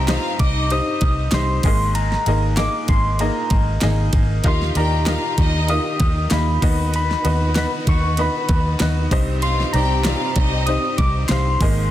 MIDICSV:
0, 0, Header, 1, 7, 480
1, 0, Start_track
1, 0, Tempo, 623053
1, 1505, Time_signature, 4, 2, 24, 8
1, 9174, End_track
2, 0, Start_track
2, 0, Title_t, "Soft synth lead"
2, 0, Program_c, 0, 80
2, 0, Note_on_c, 0, 82, 108
2, 307, Note_on_c, 0, 86, 104
2, 319, Note_off_c, 0, 82, 0
2, 555, Note_on_c, 0, 87, 125
2, 566, Note_off_c, 0, 86, 0
2, 1032, Note_on_c, 0, 84, 102
2, 1044, Note_off_c, 0, 87, 0
2, 1257, Note_off_c, 0, 84, 0
2, 1262, Note_on_c, 0, 84, 102
2, 1502, Note_on_c, 0, 82, 102
2, 1513, Note_off_c, 0, 84, 0
2, 1984, Note_on_c, 0, 86, 112
2, 1995, Note_off_c, 0, 82, 0
2, 2228, Note_on_c, 0, 84, 100
2, 2240, Note_off_c, 0, 86, 0
2, 2467, Note_off_c, 0, 84, 0
2, 2471, Note_on_c, 0, 82, 90
2, 3157, Note_off_c, 0, 82, 0
2, 3448, Note_on_c, 0, 84, 101
2, 3551, Note_off_c, 0, 84, 0
2, 3676, Note_on_c, 0, 82, 109
2, 4388, Note_on_c, 0, 87, 116
2, 4400, Note_off_c, 0, 82, 0
2, 4863, Note_off_c, 0, 87, 0
2, 4868, Note_on_c, 0, 83, 92
2, 5316, Note_off_c, 0, 83, 0
2, 5360, Note_on_c, 0, 83, 107
2, 5802, Note_off_c, 0, 83, 0
2, 5840, Note_on_c, 0, 83, 98
2, 5944, Note_off_c, 0, 83, 0
2, 6076, Note_on_c, 0, 85, 97
2, 6326, Note_on_c, 0, 83, 92
2, 6338, Note_off_c, 0, 85, 0
2, 7036, Note_off_c, 0, 83, 0
2, 7261, Note_on_c, 0, 84, 107
2, 7495, Note_on_c, 0, 82, 109
2, 7507, Note_off_c, 0, 84, 0
2, 8215, Note_on_c, 0, 87, 119
2, 8226, Note_off_c, 0, 82, 0
2, 8458, Note_on_c, 0, 86, 101
2, 8469, Note_off_c, 0, 87, 0
2, 8684, Note_off_c, 0, 86, 0
2, 8689, Note_on_c, 0, 84, 109
2, 9174, Note_off_c, 0, 84, 0
2, 9174, End_track
3, 0, Start_track
3, 0, Title_t, "Violin section"
3, 0, Program_c, 1, 48
3, 77, Note_on_c, 1, 77, 108
3, 79, Note_on_c, 1, 65, 94
3, 264, Note_off_c, 1, 77, 0
3, 266, Note_off_c, 1, 65, 0
3, 304, Note_on_c, 1, 75, 122
3, 305, Note_on_c, 1, 63, 108
3, 756, Note_off_c, 1, 63, 0
3, 756, Note_off_c, 1, 75, 0
3, 3432, Note_on_c, 1, 65, 92
3, 3432, Note_on_c, 1, 77, 103
3, 3621, Note_off_c, 1, 65, 0
3, 3621, Note_off_c, 1, 77, 0
3, 3672, Note_on_c, 1, 67, 83
3, 3675, Note_on_c, 1, 79, 91
3, 3861, Note_off_c, 1, 67, 0
3, 3863, Note_off_c, 1, 79, 0
3, 3903, Note_on_c, 1, 77, 103
3, 3906, Note_on_c, 1, 65, 92
3, 4096, Note_off_c, 1, 77, 0
3, 4097, Note_off_c, 1, 65, 0
3, 4143, Note_on_c, 1, 75, 120
3, 4147, Note_on_c, 1, 63, 97
3, 4595, Note_off_c, 1, 75, 0
3, 4597, Note_off_c, 1, 63, 0
3, 7254, Note_on_c, 1, 65, 99
3, 7254, Note_on_c, 1, 77, 108
3, 7451, Note_off_c, 1, 65, 0
3, 7451, Note_off_c, 1, 77, 0
3, 7504, Note_on_c, 1, 67, 88
3, 7507, Note_on_c, 1, 79, 99
3, 7697, Note_off_c, 1, 67, 0
3, 7698, Note_off_c, 1, 79, 0
3, 7741, Note_on_c, 1, 77, 102
3, 7743, Note_on_c, 1, 65, 93
3, 7935, Note_off_c, 1, 77, 0
3, 7936, Note_off_c, 1, 65, 0
3, 7979, Note_on_c, 1, 63, 99
3, 7981, Note_on_c, 1, 75, 115
3, 8433, Note_off_c, 1, 63, 0
3, 8434, Note_off_c, 1, 75, 0
3, 9174, End_track
4, 0, Start_track
4, 0, Title_t, "Upright piano"
4, 0, Program_c, 2, 0
4, 0, Control_c, 2, 64, 127
4, 0, Note_on_c, 2, 43, 78
4, 0, Note_on_c, 2, 60, 70
4, 0, Note_on_c, 2, 63, 66
4, 0, Note_on_c, 2, 67, 63
4, 0, Note_on_c, 2, 72, 69
4, 0, Note_on_c, 2, 75, 87
4, 62, Note_off_c, 2, 60, 0
4, 62, Note_off_c, 2, 63, 0
4, 62, Note_on_c, 2, 60, 77
4, 62, Note_on_c, 2, 63, 72
4, 65, Note_off_c, 2, 67, 0
4, 65, Note_on_c, 2, 67, 67
4, 69, Note_off_c, 2, 72, 0
4, 69, Note_on_c, 2, 72, 73
4, 72, Note_off_c, 2, 75, 0
4, 72, Note_on_c, 2, 75, 83
4, 496, Note_off_c, 2, 60, 0
4, 496, Note_off_c, 2, 63, 0
4, 497, Note_off_c, 2, 67, 0
4, 500, Note_off_c, 2, 72, 0
4, 501, Note_off_c, 2, 75, 0
4, 543, Note_on_c, 2, 60, 75
4, 545, Note_on_c, 2, 63, 75
4, 549, Note_on_c, 2, 67, 70
4, 550, Note_on_c, 2, 72, 72
4, 553, Note_on_c, 2, 75, 87
4, 976, Note_off_c, 2, 60, 0
4, 977, Note_off_c, 2, 63, 0
4, 979, Note_off_c, 2, 67, 0
4, 980, Note_off_c, 2, 72, 0
4, 981, Note_off_c, 2, 75, 0
4, 1023, Note_on_c, 2, 60, 69
4, 1029, Note_on_c, 2, 63, 72
4, 1031, Note_on_c, 2, 67, 67
4, 1035, Note_on_c, 2, 72, 70
4, 1035, Note_on_c, 2, 75, 79
4, 1258, Note_off_c, 2, 63, 0
4, 1264, Note_off_c, 2, 60, 0
4, 1266, Note_off_c, 2, 75, 0
4, 1268, Note_off_c, 2, 67, 0
4, 1268, Note_on_c, 2, 58, 70
4, 1270, Note_off_c, 2, 72, 0
4, 1270, Note_on_c, 2, 63, 73
4, 1272, Note_on_c, 2, 68, 74
4, 1273, Note_on_c, 2, 51, 59
4, 1274, Note_on_c, 2, 44, 68
4, 1276, Control_c, 2, 64, 0
4, 1277, Note_on_c, 2, 70, 68
4, 1278, Note_on_c, 2, 75, 85
4, 1279, Note_off_c, 2, 43, 0
4, 1406, Control_c, 2, 64, 127
4, 1699, Note_off_c, 2, 58, 0
4, 1700, Note_off_c, 2, 63, 0
4, 1701, Note_off_c, 2, 68, 0
4, 1703, Note_off_c, 2, 70, 0
4, 1704, Note_off_c, 2, 75, 0
4, 1747, Note_on_c, 2, 58, 68
4, 1749, Note_on_c, 2, 63, 68
4, 1755, Note_on_c, 2, 68, 66
4, 1755, Note_on_c, 2, 70, 68
4, 1758, Note_on_c, 2, 75, 83
4, 1958, Note_off_c, 2, 51, 0
4, 1959, Note_off_c, 2, 44, 0
4, 1962, Note_off_c, 2, 58, 0
4, 1963, Note_off_c, 2, 63, 0
4, 1966, Note_off_c, 2, 68, 0
4, 1966, Note_off_c, 2, 70, 0
4, 1968, Note_off_c, 2, 75, 0
4, 1982, Note_on_c, 2, 58, 80
4, 1985, Note_on_c, 2, 63, 64
4, 1986, Note_on_c, 2, 68, 69
4, 1987, Note_on_c, 2, 70, 69
4, 1990, Note_on_c, 2, 75, 81
4, 2416, Note_off_c, 2, 58, 0
4, 2417, Note_off_c, 2, 63, 0
4, 2418, Note_off_c, 2, 68, 0
4, 2418, Note_off_c, 2, 70, 0
4, 2420, Note_off_c, 2, 75, 0
4, 2463, Note_on_c, 2, 58, 77
4, 2465, Note_on_c, 2, 63, 66
4, 2467, Note_on_c, 2, 68, 68
4, 2470, Note_on_c, 2, 70, 66
4, 2472, Note_on_c, 2, 75, 83
4, 2896, Note_off_c, 2, 58, 0
4, 2897, Note_off_c, 2, 63, 0
4, 2898, Note_off_c, 2, 68, 0
4, 2900, Note_off_c, 2, 70, 0
4, 2901, Note_off_c, 2, 75, 0
4, 2943, Note_on_c, 2, 63, 71
4, 2944, Note_on_c, 2, 58, 71
4, 2948, Note_on_c, 2, 68, 69
4, 2949, Note_on_c, 2, 70, 67
4, 2952, Note_on_c, 2, 75, 81
4, 3376, Note_off_c, 2, 63, 0
4, 3377, Note_off_c, 2, 58, 0
4, 3379, Note_off_c, 2, 68, 0
4, 3379, Note_off_c, 2, 70, 0
4, 3381, Note_off_c, 2, 75, 0
4, 3425, Note_on_c, 2, 63, 92
4, 3427, Note_on_c, 2, 65, 87
4, 3430, Note_on_c, 2, 67, 88
4, 3432, Note_on_c, 2, 46, 65
4, 3432, Note_on_c, 2, 70, 93
4, 3435, Control_c, 2, 64, 0
4, 3435, Note_on_c, 2, 75, 102
4, 3573, Control_c, 2, 64, 127
4, 3641, Note_off_c, 2, 63, 0
4, 3642, Note_off_c, 2, 65, 0
4, 3643, Note_off_c, 2, 67, 0
4, 3645, Note_off_c, 2, 70, 0
4, 3646, Note_off_c, 2, 75, 0
4, 3665, Note_on_c, 2, 63, 76
4, 3670, Note_on_c, 2, 65, 64
4, 3670, Note_on_c, 2, 67, 64
4, 3675, Note_on_c, 2, 70, 64
4, 3675, Note_on_c, 2, 74, 79
4, 3881, Note_off_c, 2, 63, 0
4, 3884, Note_off_c, 2, 65, 0
4, 3884, Note_off_c, 2, 67, 0
4, 3886, Note_off_c, 2, 70, 0
4, 3886, Note_off_c, 2, 74, 0
4, 3904, Note_on_c, 2, 63, 75
4, 3907, Note_on_c, 2, 65, 69
4, 3909, Note_on_c, 2, 70, 68
4, 3910, Note_on_c, 2, 67, 65
4, 3912, Note_on_c, 2, 75, 79
4, 4117, Note_off_c, 2, 46, 0
4, 4337, Note_off_c, 2, 63, 0
4, 4338, Note_off_c, 2, 65, 0
4, 4339, Note_off_c, 2, 70, 0
4, 4340, Note_off_c, 2, 67, 0
4, 4341, Note_off_c, 2, 75, 0
4, 4384, Note_on_c, 2, 63, 76
4, 4386, Note_on_c, 2, 65, 72
4, 4388, Note_on_c, 2, 67, 66
4, 4391, Note_on_c, 2, 70, 67
4, 4391, Note_on_c, 2, 75, 83
4, 4817, Note_off_c, 2, 63, 0
4, 4818, Note_off_c, 2, 65, 0
4, 4818, Note_off_c, 2, 67, 0
4, 4820, Note_off_c, 2, 70, 0
4, 4820, Note_off_c, 2, 75, 0
4, 4861, Note_on_c, 2, 63, 79
4, 4864, Note_on_c, 2, 65, 61
4, 4867, Note_on_c, 2, 58, 69
4, 4867, Note_on_c, 2, 67, 65
4, 4869, Note_on_c, 2, 75, 80
4, 5091, Note_off_c, 2, 63, 0
4, 5098, Note_off_c, 2, 75, 0
4, 5099, Note_on_c, 2, 59, 76
4, 5103, Note_on_c, 2, 63, 74
4, 5104, Note_on_c, 2, 51, 61
4, 5104, Note_on_c, 2, 66, 74
4, 5105, Note_off_c, 2, 65, 0
4, 5106, Note_off_c, 2, 58, 0
4, 5106, Note_off_c, 2, 67, 0
4, 5106, Note_on_c, 2, 71, 68
4, 5110, Note_on_c, 2, 75, 86
4, 5115, Control_c, 2, 64, 0
4, 5244, Control_c, 2, 64, 127
4, 5534, Note_off_c, 2, 59, 0
4, 5536, Note_off_c, 2, 63, 0
4, 5537, Note_off_c, 2, 66, 0
4, 5538, Note_off_c, 2, 71, 0
4, 5540, Note_off_c, 2, 75, 0
4, 5578, Note_on_c, 2, 59, 75
4, 5580, Note_on_c, 2, 63, 65
4, 5582, Note_on_c, 2, 66, 67
4, 5583, Note_on_c, 2, 71, 66
4, 5589, Note_on_c, 2, 75, 84
4, 5794, Note_off_c, 2, 51, 0
4, 5797, Note_off_c, 2, 59, 0
4, 5798, Note_off_c, 2, 63, 0
4, 5800, Note_off_c, 2, 66, 0
4, 5800, Note_off_c, 2, 71, 0
4, 5803, Note_off_c, 2, 75, 0
4, 5817, Note_on_c, 2, 59, 78
4, 5822, Note_on_c, 2, 63, 70
4, 5823, Note_on_c, 2, 66, 69
4, 5827, Note_on_c, 2, 71, 67
4, 5828, Note_on_c, 2, 75, 86
4, 6253, Note_off_c, 2, 59, 0
4, 6256, Note_off_c, 2, 63, 0
4, 6256, Note_off_c, 2, 66, 0
4, 6258, Note_off_c, 2, 71, 0
4, 6259, Note_off_c, 2, 75, 0
4, 6300, Note_on_c, 2, 59, 73
4, 6307, Note_on_c, 2, 63, 69
4, 6307, Note_on_c, 2, 66, 68
4, 6311, Note_on_c, 2, 71, 66
4, 6311, Note_on_c, 2, 75, 82
4, 6735, Note_off_c, 2, 59, 0
4, 6738, Note_off_c, 2, 63, 0
4, 6739, Note_off_c, 2, 66, 0
4, 6740, Note_off_c, 2, 71, 0
4, 6740, Note_off_c, 2, 75, 0
4, 6781, Note_on_c, 2, 59, 72
4, 6784, Note_on_c, 2, 63, 63
4, 6786, Note_on_c, 2, 66, 72
4, 6789, Note_on_c, 2, 71, 64
4, 6791, Note_on_c, 2, 75, 77
4, 7012, Note_off_c, 2, 63, 0
4, 7020, Note_off_c, 2, 75, 0
4, 7022, Note_on_c, 2, 60, 92
4, 7023, Note_off_c, 2, 59, 0
4, 7023, Note_on_c, 2, 63, 90
4, 7025, Note_off_c, 2, 66, 0
4, 7027, Note_off_c, 2, 71, 0
4, 7027, Note_on_c, 2, 43, 73
4, 7027, Note_on_c, 2, 67, 77
4, 7028, Note_on_c, 2, 72, 85
4, 7031, Note_on_c, 2, 75, 109
4, 7036, Control_c, 2, 64, 0
4, 7185, Control_c, 2, 64, 127
4, 7456, Note_off_c, 2, 60, 0
4, 7457, Note_off_c, 2, 63, 0
4, 7458, Note_off_c, 2, 67, 0
4, 7459, Note_off_c, 2, 72, 0
4, 7461, Note_off_c, 2, 75, 0
4, 7503, Note_on_c, 2, 60, 77
4, 7504, Note_on_c, 2, 63, 65
4, 7508, Note_on_c, 2, 67, 63
4, 7510, Note_on_c, 2, 72, 62
4, 7512, Note_on_c, 2, 74, 85
4, 7715, Note_off_c, 2, 43, 0
4, 7720, Note_off_c, 2, 60, 0
4, 7721, Note_off_c, 2, 63, 0
4, 7723, Note_off_c, 2, 67, 0
4, 7724, Note_off_c, 2, 72, 0
4, 7725, Note_off_c, 2, 74, 0
4, 7740, Note_on_c, 2, 60, 75
4, 7744, Note_on_c, 2, 63, 63
4, 7746, Note_on_c, 2, 67, 66
4, 7749, Note_on_c, 2, 72, 71
4, 7750, Note_on_c, 2, 74, 84
4, 8175, Note_off_c, 2, 60, 0
4, 8177, Note_off_c, 2, 63, 0
4, 8178, Note_off_c, 2, 67, 0
4, 8179, Note_off_c, 2, 72, 0
4, 8180, Note_off_c, 2, 74, 0
4, 8226, Note_on_c, 2, 60, 76
4, 8229, Note_on_c, 2, 63, 67
4, 8231, Note_on_c, 2, 67, 74
4, 8234, Note_on_c, 2, 72, 70
4, 8235, Note_on_c, 2, 75, 79
4, 8658, Note_off_c, 2, 60, 0
4, 8660, Note_off_c, 2, 63, 0
4, 8660, Note_off_c, 2, 67, 0
4, 8662, Note_off_c, 2, 72, 0
4, 8663, Note_off_c, 2, 75, 0
4, 8705, Note_on_c, 2, 60, 72
4, 8707, Note_on_c, 2, 63, 67
4, 8708, Note_on_c, 2, 67, 64
4, 8711, Note_on_c, 2, 72, 65
4, 8714, Note_on_c, 2, 77, 82
4, 8937, Note_off_c, 2, 63, 0
4, 8945, Note_off_c, 2, 60, 0
4, 8947, Note_off_c, 2, 67, 0
4, 8948, Note_on_c, 2, 58, 72
4, 8949, Note_off_c, 2, 72, 0
4, 8949, Note_on_c, 2, 63, 73
4, 8949, Note_on_c, 2, 68, 68
4, 8950, Note_off_c, 2, 77, 0
4, 8951, Note_on_c, 2, 44, 63
4, 8951, Note_on_c, 2, 51, 68
4, 8953, Note_on_c, 2, 70, 72
4, 8954, Control_c, 2, 64, 0
4, 8956, Note_on_c, 2, 75, 91
4, 9074, Control_c, 2, 64, 127
4, 9174, Note_off_c, 2, 44, 0
4, 9174, Note_off_c, 2, 51, 0
4, 9174, Note_off_c, 2, 58, 0
4, 9174, Note_off_c, 2, 63, 0
4, 9174, Note_off_c, 2, 68, 0
4, 9174, Note_off_c, 2, 70, 0
4, 9174, Note_off_c, 2, 75, 0
4, 9174, End_track
5, 0, Start_track
5, 0, Title_t, "String section"
5, 0, Program_c, 3, 48
5, 3419, Note_on_c, 3, 51, 82
5, 3424, Note_on_c, 3, 67, 87
5, 3425, Note_on_c, 3, 65, 73
5, 3428, Note_on_c, 3, 63, 72
5, 5085, Note_off_c, 3, 51, 0
5, 5087, Note_off_c, 3, 67, 0
5, 5088, Note_off_c, 3, 65, 0
5, 5105, Note_on_c, 3, 71, 90
5, 5106, Note_on_c, 3, 51, 81
5, 5108, Note_on_c, 3, 66, 74
5, 7006, Note_off_c, 3, 51, 0
5, 7006, Note_off_c, 3, 71, 0
5, 7008, Note_off_c, 3, 66, 0
5, 7025, Note_on_c, 3, 67, 94
5, 7028, Note_on_c, 3, 48, 81
5, 7029, Note_on_c, 3, 60, 80
5, 8927, Note_off_c, 3, 67, 0
5, 8928, Note_off_c, 3, 48, 0
5, 8929, Note_off_c, 3, 60, 0
5, 8953, Note_on_c, 3, 56, 85
5, 8955, Note_on_c, 3, 58, 77
5, 9174, Note_off_c, 3, 56, 0
5, 9174, Note_off_c, 3, 58, 0
5, 9174, Note_off_c, 3, 63, 0
5, 9174, End_track
6, 0, Start_track
6, 0, Title_t, "Fingered electric bass"
6, 0, Program_c, 4, 33
6, 0, Note_on_c, 4, 36, 94
6, 129, Note_off_c, 4, 36, 0
6, 305, Note_on_c, 4, 36, 121
6, 612, Note_off_c, 4, 36, 0
6, 784, Note_on_c, 4, 36, 109
6, 981, Note_off_c, 4, 36, 0
6, 1020, Note_on_c, 4, 36, 109
6, 1219, Note_off_c, 4, 36, 0
6, 1261, Note_on_c, 4, 32, 97
6, 1656, Note_off_c, 4, 32, 0
6, 1744, Note_on_c, 4, 32, 88
6, 2051, Note_off_c, 4, 32, 0
6, 2223, Note_on_c, 4, 32, 100
6, 2531, Note_off_c, 4, 32, 0
6, 2704, Note_on_c, 4, 32, 109
6, 2901, Note_off_c, 4, 32, 0
6, 2948, Note_on_c, 4, 32, 109
6, 3144, Note_off_c, 4, 32, 0
6, 3182, Note_on_c, 4, 32, 113
6, 3380, Note_off_c, 4, 32, 0
6, 3423, Note_on_c, 4, 39, 113
6, 3621, Note_off_c, 4, 39, 0
6, 3661, Note_on_c, 4, 39, 90
6, 3970, Note_off_c, 4, 39, 0
6, 4145, Note_on_c, 4, 39, 97
6, 4452, Note_off_c, 4, 39, 0
6, 4623, Note_on_c, 4, 39, 122
6, 4821, Note_off_c, 4, 39, 0
6, 4863, Note_on_c, 4, 39, 110
6, 5061, Note_off_c, 4, 39, 0
6, 5104, Note_on_c, 4, 39, 99
6, 5498, Note_off_c, 4, 39, 0
6, 5584, Note_on_c, 4, 39, 97
6, 5891, Note_off_c, 4, 39, 0
6, 6065, Note_on_c, 4, 39, 101
6, 6372, Note_off_c, 4, 39, 0
6, 6545, Note_on_c, 4, 39, 111
6, 6742, Note_off_c, 4, 39, 0
6, 6784, Note_on_c, 4, 39, 101
6, 6981, Note_off_c, 4, 39, 0
6, 7023, Note_on_c, 4, 36, 106
6, 7417, Note_off_c, 4, 36, 0
6, 7502, Note_on_c, 4, 36, 94
6, 7810, Note_off_c, 4, 36, 0
6, 7984, Note_on_c, 4, 36, 109
6, 8292, Note_off_c, 4, 36, 0
6, 8464, Note_on_c, 4, 36, 105
6, 8661, Note_off_c, 4, 36, 0
6, 8705, Note_on_c, 4, 36, 105
6, 8902, Note_off_c, 4, 36, 0
6, 8941, Note_on_c, 4, 32, 103
6, 9174, Note_off_c, 4, 32, 0
6, 9174, End_track
7, 0, Start_track
7, 0, Title_t, "Drums"
7, 64, Note_on_c, 9, 38, 121
7, 65, Note_on_c, 9, 51, 91
7, 141, Note_off_c, 9, 38, 0
7, 142, Note_off_c, 9, 51, 0
7, 304, Note_on_c, 9, 51, 66
7, 305, Note_on_c, 9, 36, 90
7, 381, Note_off_c, 9, 51, 0
7, 383, Note_off_c, 9, 36, 0
7, 543, Note_on_c, 9, 51, 64
7, 620, Note_off_c, 9, 51, 0
7, 777, Note_on_c, 9, 51, 56
7, 783, Note_on_c, 9, 36, 97
7, 854, Note_off_c, 9, 51, 0
7, 860, Note_off_c, 9, 36, 0
7, 1012, Note_on_c, 9, 51, 85
7, 1016, Note_on_c, 9, 38, 109
7, 1089, Note_off_c, 9, 51, 0
7, 1093, Note_off_c, 9, 38, 0
7, 1258, Note_on_c, 9, 46, 81
7, 1258, Note_on_c, 9, 51, 67
7, 1261, Note_on_c, 9, 36, 109
7, 1335, Note_off_c, 9, 46, 0
7, 1335, Note_off_c, 9, 51, 0
7, 1338, Note_off_c, 9, 36, 0
7, 1502, Note_on_c, 9, 51, 63
7, 1579, Note_off_c, 9, 51, 0
7, 1633, Note_on_c, 9, 38, 41
7, 1710, Note_off_c, 9, 38, 0
7, 1743, Note_on_c, 9, 51, 66
7, 1820, Note_off_c, 9, 51, 0
7, 1981, Note_on_c, 9, 38, 113
7, 1982, Note_on_c, 9, 51, 87
7, 2058, Note_off_c, 9, 38, 0
7, 2059, Note_off_c, 9, 51, 0
7, 2219, Note_on_c, 9, 51, 67
7, 2223, Note_on_c, 9, 36, 91
7, 2296, Note_off_c, 9, 51, 0
7, 2300, Note_off_c, 9, 36, 0
7, 2458, Note_on_c, 9, 51, 57
7, 2535, Note_off_c, 9, 51, 0
7, 2698, Note_on_c, 9, 51, 57
7, 2702, Note_on_c, 9, 36, 95
7, 2775, Note_off_c, 9, 51, 0
7, 2779, Note_off_c, 9, 36, 0
7, 2935, Note_on_c, 9, 51, 86
7, 2940, Note_on_c, 9, 38, 99
7, 3012, Note_off_c, 9, 51, 0
7, 3017, Note_off_c, 9, 38, 0
7, 3179, Note_on_c, 9, 51, 60
7, 3182, Note_on_c, 9, 36, 93
7, 3256, Note_off_c, 9, 51, 0
7, 3259, Note_off_c, 9, 36, 0
7, 3418, Note_on_c, 9, 51, 62
7, 3422, Note_on_c, 9, 36, 113
7, 3495, Note_off_c, 9, 51, 0
7, 3499, Note_off_c, 9, 36, 0
7, 3558, Note_on_c, 9, 38, 38
7, 3635, Note_off_c, 9, 38, 0
7, 3661, Note_on_c, 9, 51, 66
7, 3738, Note_off_c, 9, 51, 0
7, 3901, Note_on_c, 9, 38, 117
7, 3902, Note_on_c, 9, 51, 86
7, 3978, Note_off_c, 9, 38, 0
7, 3979, Note_off_c, 9, 51, 0
7, 4143, Note_on_c, 9, 51, 61
7, 4144, Note_on_c, 9, 36, 86
7, 4220, Note_off_c, 9, 51, 0
7, 4221, Note_off_c, 9, 36, 0
7, 4379, Note_on_c, 9, 51, 64
7, 4457, Note_off_c, 9, 51, 0
7, 4619, Note_on_c, 9, 51, 63
7, 4624, Note_on_c, 9, 36, 99
7, 4696, Note_off_c, 9, 51, 0
7, 4701, Note_off_c, 9, 36, 0
7, 4856, Note_on_c, 9, 51, 84
7, 4861, Note_on_c, 9, 38, 109
7, 4933, Note_off_c, 9, 51, 0
7, 4938, Note_off_c, 9, 38, 0
7, 5103, Note_on_c, 9, 36, 108
7, 5103, Note_on_c, 9, 46, 76
7, 5103, Note_on_c, 9, 51, 60
7, 5180, Note_off_c, 9, 36, 0
7, 5180, Note_off_c, 9, 46, 0
7, 5180, Note_off_c, 9, 51, 0
7, 5344, Note_on_c, 9, 51, 62
7, 5421, Note_off_c, 9, 51, 0
7, 5477, Note_on_c, 9, 38, 38
7, 5554, Note_off_c, 9, 38, 0
7, 5583, Note_on_c, 9, 51, 69
7, 5660, Note_off_c, 9, 51, 0
7, 5821, Note_on_c, 9, 38, 112
7, 5822, Note_on_c, 9, 51, 85
7, 5898, Note_off_c, 9, 38, 0
7, 5899, Note_off_c, 9, 51, 0
7, 6064, Note_on_c, 9, 36, 97
7, 6064, Note_on_c, 9, 51, 63
7, 6141, Note_off_c, 9, 36, 0
7, 6141, Note_off_c, 9, 51, 0
7, 6296, Note_on_c, 9, 51, 63
7, 6373, Note_off_c, 9, 51, 0
7, 6538, Note_on_c, 9, 51, 59
7, 6542, Note_on_c, 9, 36, 101
7, 6615, Note_off_c, 9, 51, 0
7, 6619, Note_off_c, 9, 36, 0
7, 6776, Note_on_c, 9, 51, 87
7, 6780, Note_on_c, 9, 38, 115
7, 6853, Note_off_c, 9, 51, 0
7, 6857, Note_off_c, 9, 38, 0
7, 7021, Note_on_c, 9, 36, 111
7, 7021, Note_on_c, 9, 46, 76
7, 7021, Note_on_c, 9, 51, 65
7, 7098, Note_off_c, 9, 36, 0
7, 7098, Note_off_c, 9, 46, 0
7, 7098, Note_off_c, 9, 51, 0
7, 7258, Note_on_c, 9, 51, 68
7, 7336, Note_off_c, 9, 51, 0
7, 7397, Note_on_c, 9, 38, 35
7, 7474, Note_off_c, 9, 38, 0
7, 7500, Note_on_c, 9, 51, 71
7, 7577, Note_off_c, 9, 51, 0
7, 7739, Note_on_c, 9, 38, 120
7, 7740, Note_on_c, 9, 51, 90
7, 7816, Note_off_c, 9, 38, 0
7, 7817, Note_off_c, 9, 51, 0
7, 7978, Note_on_c, 9, 51, 62
7, 7983, Note_on_c, 9, 36, 97
7, 8055, Note_off_c, 9, 51, 0
7, 8060, Note_off_c, 9, 36, 0
7, 8218, Note_on_c, 9, 51, 57
7, 8295, Note_off_c, 9, 51, 0
7, 8460, Note_on_c, 9, 51, 57
7, 8462, Note_on_c, 9, 36, 96
7, 8537, Note_off_c, 9, 51, 0
7, 8539, Note_off_c, 9, 36, 0
7, 8694, Note_on_c, 9, 51, 88
7, 8698, Note_on_c, 9, 38, 101
7, 8771, Note_off_c, 9, 51, 0
7, 8775, Note_off_c, 9, 38, 0
7, 8941, Note_on_c, 9, 36, 110
7, 8941, Note_on_c, 9, 46, 77
7, 8941, Note_on_c, 9, 51, 61
7, 9018, Note_off_c, 9, 36, 0
7, 9018, Note_off_c, 9, 46, 0
7, 9018, Note_off_c, 9, 51, 0
7, 9174, End_track
0, 0, End_of_file